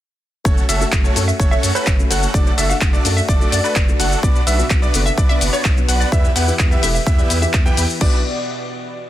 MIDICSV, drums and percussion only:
0, 0, Header, 1, 2, 480
1, 0, Start_track
1, 0, Key_signature, 2, "minor"
1, 0, Tempo, 472441
1, 459, Time_signature, 4, 2, 24, 8
1, 9243, End_track
2, 0, Start_track
2, 0, Title_t, "Drums"
2, 458, Note_on_c, 9, 36, 120
2, 465, Note_on_c, 9, 82, 47
2, 560, Note_off_c, 9, 36, 0
2, 567, Note_off_c, 9, 82, 0
2, 586, Note_on_c, 9, 82, 23
2, 688, Note_off_c, 9, 82, 0
2, 699, Note_on_c, 9, 46, 99
2, 706, Note_on_c, 9, 82, 81
2, 801, Note_off_c, 9, 46, 0
2, 808, Note_off_c, 9, 82, 0
2, 826, Note_on_c, 9, 82, 37
2, 928, Note_off_c, 9, 82, 0
2, 937, Note_on_c, 9, 39, 118
2, 938, Note_on_c, 9, 36, 125
2, 946, Note_on_c, 9, 82, 46
2, 1038, Note_off_c, 9, 39, 0
2, 1040, Note_off_c, 9, 36, 0
2, 1048, Note_off_c, 9, 82, 0
2, 1067, Note_on_c, 9, 82, 24
2, 1168, Note_off_c, 9, 82, 0
2, 1179, Note_on_c, 9, 46, 104
2, 1186, Note_on_c, 9, 82, 80
2, 1281, Note_off_c, 9, 46, 0
2, 1288, Note_off_c, 9, 82, 0
2, 1307, Note_on_c, 9, 82, 37
2, 1408, Note_off_c, 9, 82, 0
2, 1418, Note_on_c, 9, 36, 120
2, 1427, Note_on_c, 9, 82, 50
2, 1520, Note_off_c, 9, 36, 0
2, 1528, Note_off_c, 9, 82, 0
2, 1546, Note_on_c, 9, 82, 23
2, 1648, Note_off_c, 9, 82, 0
2, 1658, Note_on_c, 9, 46, 104
2, 1665, Note_on_c, 9, 82, 81
2, 1760, Note_off_c, 9, 46, 0
2, 1767, Note_off_c, 9, 82, 0
2, 1786, Note_on_c, 9, 82, 37
2, 1887, Note_off_c, 9, 82, 0
2, 1895, Note_on_c, 9, 39, 127
2, 1898, Note_on_c, 9, 36, 121
2, 1905, Note_on_c, 9, 82, 49
2, 1997, Note_off_c, 9, 39, 0
2, 2000, Note_off_c, 9, 36, 0
2, 2007, Note_off_c, 9, 82, 0
2, 2026, Note_on_c, 9, 82, 24
2, 2128, Note_off_c, 9, 82, 0
2, 2140, Note_on_c, 9, 46, 105
2, 2147, Note_on_c, 9, 82, 83
2, 2241, Note_off_c, 9, 46, 0
2, 2248, Note_off_c, 9, 82, 0
2, 2266, Note_on_c, 9, 82, 36
2, 2367, Note_off_c, 9, 82, 0
2, 2378, Note_on_c, 9, 36, 124
2, 2386, Note_on_c, 9, 82, 49
2, 2480, Note_off_c, 9, 36, 0
2, 2488, Note_off_c, 9, 82, 0
2, 2506, Note_on_c, 9, 82, 21
2, 2607, Note_off_c, 9, 82, 0
2, 2620, Note_on_c, 9, 46, 101
2, 2627, Note_on_c, 9, 82, 79
2, 2721, Note_off_c, 9, 46, 0
2, 2728, Note_off_c, 9, 82, 0
2, 2747, Note_on_c, 9, 82, 35
2, 2848, Note_off_c, 9, 82, 0
2, 2857, Note_on_c, 9, 39, 121
2, 2858, Note_on_c, 9, 36, 127
2, 2866, Note_on_c, 9, 82, 46
2, 2958, Note_off_c, 9, 39, 0
2, 2960, Note_off_c, 9, 36, 0
2, 2968, Note_off_c, 9, 82, 0
2, 2986, Note_on_c, 9, 82, 23
2, 3088, Note_off_c, 9, 82, 0
2, 3099, Note_on_c, 9, 46, 108
2, 3106, Note_on_c, 9, 82, 79
2, 3200, Note_off_c, 9, 46, 0
2, 3207, Note_off_c, 9, 82, 0
2, 3227, Note_on_c, 9, 82, 34
2, 3329, Note_off_c, 9, 82, 0
2, 3338, Note_on_c, 9, 36, 121
2, 3348, Note_on_c, 9, 82, 46
2, 3440, Note_off_c, 9, 36, 0
2, 3449, Note_off_c, 9, 82, 0
2, 3467, Note_on_c, 9, 82, 21
2, 3569, Note_off_c, 9, 82, 0
2, 3580, Note_on_c, 9, 46, 107
2, 3587, Note_on_c, 9, 82, 76
2, 3681, Note_off_c, 9, 46, 0
2, 3688, Note_off_c, 9, 82, 0
2, 3707, Note_on_c, 9, 82, 34
2, 3809, Note_off_c, 9, 82, 0
2, 3817, Note_on_c, 9, 39, 127
2, 3818, Note_on_c, 9, 36, 127
2, 3827, Note_on_c, 9, 82, 49
2, 3918, Note_off_c, 9, 39, 0
2, 3920, Note_off_c, 9, 36, 0
2, 3928, Note_off_c, 9, 82, 0
2, 3947, Note_on_c, 9, 82, 23
2, 4049, Note_off_c, 9, 82, 0
2, 4060, Note_on_c, 9, 46, 105
2, 4067, Note_on_c, 9, 82, 75
2, 4162, Note_off_c, 9, 46, 0
2, 4169, Note_off_c, 9, 82, 0
2, 4188, Note_on_c, 9, 82, 34
2, 4289, Note_off_c, 9, 82, 0
2, 4298, Note_on_c, 9, 36, 127
2, 4307, Note_on_c, 9, 82, 45
2, 4400, Note_off_c, 9, 36, 0
2, 4408, Note_off_c, 9, 82, 0
2, 4427, Note_on_c, 9, 82, 21
2, 4529, Note_off_c, 9, 82, 0
2, 4540, Note_on_c, 9, 46, 109
2, 4547, Note_on_c, 9, 82, 74
2, 4642, Note_off_c, 9, 46, 0
2, 4649, Note_off_c, 9, 82, 0
2, 4667, Note_on_c, 9, 82, 34
2, 4768, Note_off_c, 9, 82, 0
2, 4776, Note_on_c, 9, 39, 120
2, 4779, Note_on_c, 9, 36, 127
2, 4786, Note_on_c, 9, 82, 44
2, 4878, Note_off_c, 9, 39, 0
2, 4880, Note_off_c, 9, 36, 0
2, 4888, Note_off_c, 9, 82, 0
2, 4906, Note_on_c, 9, 82, 23
2, 5008, Note_off_c, 9, 82, 0
2, 5018, Note_on_c, 9, 46, 114
2, 5025, Note_on_c, 9, 82, 81
2, 5120, Note_off_c, 9, 46, 0
2, 5127, Note_off_c, 9, 82, 0
2, 5146, Note_on_c, 9, 82, 34
2, 5248, Note_off_c, 9, 82, 0
2, 5259, Note_on_c, 9, 36, 125
2, 5266, Note_on_c, 9, 82, 46
2, 5361, Note_off_c, 9, 36, 0
2, 5368, Note_off_c, 9, 82, 0
2, 5387, Note_on_c, 9, 82, 21
2, 5488, Note_off_c, 9, 82, 0
2, 5498, Note_on_c, 9, 46, 117
2, 5506, Note_on_c, 9, 82, 77
2, 5600, Note_off_c, 9, 46, 0
2, 5607, Note_off_c, 9, 82, 0
2, 5626, Note_on_c, 9, 82, 35
2, 5728, Note_off_c, 9, 82, 0
2, 5737, Note_on_c, 9, 39, 124
2, 5739, Note_on_c, 9, 36, 127
2, 5746, Note_on_c, 9, 82, 46
2, 5838, Note_off_c, 9, 39, 0
2, 5841, Note_off_c, 9, 36, 0
2, 5848, Note_off_c, 9, 82, 0
2, 5867, Note_on_c, 9, 82, 23
2, 5968, Note_off_c, 9, 82, 0
2, 5980, Note_on_c, 9, 46, 105
2, 5987, Note_on_c, 9, 82, 75
2, 6081, Note_off_c, 9, 46, 0
2, 6088, Note_off_c, 9, 82, 0
2, 6107, Note_on_c, 9, 82, 34
2, 6208, Note_off_c, 9, 82, 0
2, 6219, Note_on_c, 9, 36, 120
2, 6227, Note_on_c, 9, 82, 43
2, 6321, Note_off_c, 9, 36, 0
2, 6328, Note_off_c, 9, 82, 0
2, 6346, Note_on_c, 9, 82, 21
2, 6448, Note_off_c, 9, 82, 0
2, 6459, Note_on_c, 9, 46, 111
2, 6466, Note_on_c, 9, 82, 76
2, 6561, Note_off_c, 9, 46, 0
2, 6568, Note_off_c, 9, 82, 0
2, 6586, Note_on_c, 9, 82, 34
2, 6688, Note_off_c, 9, 82, 0
2, 6696, Note_on_c, 9, 39, 117
2, 6699, Note_on_c, 9, 36, 127
2, 6705, Note_on_c, 9, 82, 43
2, 6797, Note_off_c, 9, 39, 0
2, 6800, Note_off_c, 9, 36, 0
2, 6807, Note_off_c, 9, 82, 0
2, 6826, Note_on_c, 9, 82, 22
2, 6927, Note_off_c, 9, 82, 0
2, 6938, Note_on_c, 9, 46, 114
2, 6945, Note_on_c, 9, 82, 78
2, 7040, Note_off_c, 9, 46, 0
2, 7047, Note_off_c, 9, 82, 0
2, 7065, Note_on_c, 9, 82, 33
2, 7166, Note_off_c, 9, 82, 0
2, 7178, Note_on_c, 9, 36, 123
2, 7184, Note_on_c, 9, 82, 46
2, 7280, Note_off_c, 9, 36, 0
2, 7286, Note_off_c, 9, 82, 0
2, 7304, Note_on_c, 9, 82, 21
2, 7406, Note_off_c, 9, 82, 0
2, 7418, Note_on_c, 9, 46, 112
2, 7425, Note_on_c, 9, 82, 74
2, 7520, Note_off_c, 9, 46, 0
2, 7527, Note_off_c, 9, 82, 0
2, 7545, Note_on_c, 9, 82, 35
2, 7646, Note_off_c, 9, 82, 0
2, 7655, Note_on_c, 9, 39, 125
2, 7659, Note_on_c, 9, 36, 127
2, 7665, Note_on_c, 9, 82, 42
2, 7757, Note_off_c, 9, 39, 0
2, 7760, Note_off_c, 9, 36, 0
2, 7767, Note_off_c, 9, 82, 0
2, 7784, Note_on_c, 9, 82, 23
2, 7886, Note_off_c, 9, 82, 0
2, 7898, Note_on_c, 9, 46, 112
2, 7905, Note_on_c, 9, 82, 72
2, 7999, Note_off_c, 9, 46, 0
2, 8006, Note_off_c, 9, 82, 0
2, 8025, Note_on_c, 9, 82, 34
2, 8127, Note_off_c, 9, 82, 0
2, 8138, Note_on_c, 9, 49, 88
2, 8139, Note_on_c, 9, 36, 117
2, 8239, Note_off_c, 9, 49, 0
2, 8240, Note_off_c, 9, 36, 0
2, 9243, End_track
0, 0, End_of_file